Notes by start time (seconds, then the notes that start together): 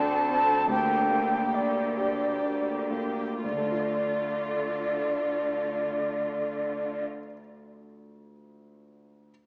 Already playing: D2 D3 C4 D4 A4 A5
0.29 C4 A4
0.68 D2 D3 A#3 G4 G5
1.10 A#3 G4
1.53 D3 D4 D5
1.97 A#3 G4
2.42 D3 D4
2.90 A#3 G4
3.42 D2 D3 A3 F4 D5
3.52 D3
3.58 A3
3.64 D4
3.72 F4
3.79 D5